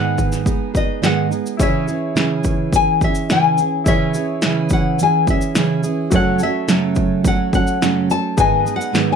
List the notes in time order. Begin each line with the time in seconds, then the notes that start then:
Already playing: G#2 D#3 G#3 B3 D#4 G#4 B4 F#5
0.18 kick, shaker
0.32 snare, shaker
0.45 G#3 B3 D#4 G#4, kick, shaker
0.74 G#3 B3 D#4 G#4 D#5, kick, shaker
1.02 G#2 D#3 G#3 B3 D#4 G#4 F#5, snare, shaker
1.30 G#3 B3 D#4 G#4, shaker
1.46 shaker
1.57 C#3 E3 C#4 E4 G#4 C#5, kick, shaker
1.62 E5
1.88 C#4 E4 G#4, shaker
2.15 C#3 E3 C#4 E4 G#4, snare, shaker
2.44 kick, shaker
2.72 E3 C#4 E4 G#4 G#5, kick, shaker
3.01 C#4 E4 G#4 E5, kick, shaker
3.15 shaker
3.30 C#3 E3 C#4 E4 G#4 G#5, snare, shaker
3.58 E4 G#4, shaker
3.62 C#4
3.84 C#3 E3 E4 G#4 C#5 E5, kick, shaker
3.89 C#4 E4 G#4
4.14 C#4 E4 G#4, shaker
4.42 C#3 E3 C#4 E4 G#4, snare, shaker
4.69 F#5, kick, shaker
4.99 E3 C#4 E4 G#4 G#5, shaker
5.27 C#4 E4 G#4 E5, kick, shaker
5.41 shaker
5.55 C#3 E3 C#4 E4 G#4, snare, shaker
5.84 C#4 E4 G#4, shaker
6.10 F#2 C#3 F#3 A3 C#4 F#4 A4, kick, shaker
6.15 C#5 F#5
6.39 F#3 A3 C#4 A4, shaker
6.43 E5
6.68 F#2 C#3 F#3 A3 C#4 A4, snare, shaker
6.96 kick, shaker
7.24 F#3 A3 C#4 A4 F#5, kick, shaker
7.53 F#3 A3 C#4 A4 F#5, kick, shaker
7.67 shaker
7.81 F#2 C#3 F#3 A3 C#4 A4, snare, shaker
8.10 F#3 A3 C#4 A4 A5, shaker
8.37 G#2 D#3 G#3 B3 D#4 G#4 B4 D#5 G#5, kick, shaker
8.64 G#3 B3 D#4 G#4, shaker
8.76 F#5
8.81 shaker
8.92 G#2 D#3 G#3 B3 D#4 G#4, snare, shaker
9.12 G#5